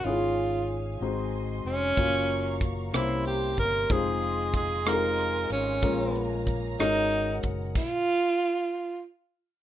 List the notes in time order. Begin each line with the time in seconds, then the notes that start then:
0.05 G#1 G#2 C#4 E4 F4 G#4 C#5 F5 G#5
0.12 F4
1.00 G#1 G#2 G#3 C4 D#4 F#4 C5 D#5 C6
1.65 F1 C#4
1.97 F#1 A#3 C#4 F4 F#4 C#5 F5 A#5 C#6, kick, closed hi-hat
2.29 closed hi-hat
2.61 kick, closed hi-hat
2.93 C2 C3 A#3 C#4 E4 G4 C5 E5 A#5 C6, cross-stick, closed hi-hat
3.25 G4, closed hi-hat
3.57 G1 A#4, kick, closed hi-hat
3.89 F1 G#3 C4 D#4 F4 G#4 C5 D#5 F5 G#5, kick, closed hi-hat
4.22 closed hi-hat
4.54 G#4, kick, closed hi-hat
4.86 G#3 C4 D#4 F4 G#4 A#4, cross-stick, closed hi-hat
4.93 A#4
5.18 cross-stick, closed hi-hat
5.50 G#1 C#4, closed hi-hat
5.82 A#1 A#2 G#3 A#3 C#4 F4 A#4 C#5 A#5, kick, closed hi-hat
6.16 closed hi-hat
6.47 kick, closed hi-hat
6.79 G#1 G#2 G#3 C#4 D#4 F#4 A#4 F#5, cross-stick, closed hi-hat
7.11 closed hi-hat
7.43 F#1, kick, closed hi-hat
7.75 F4, kick, crash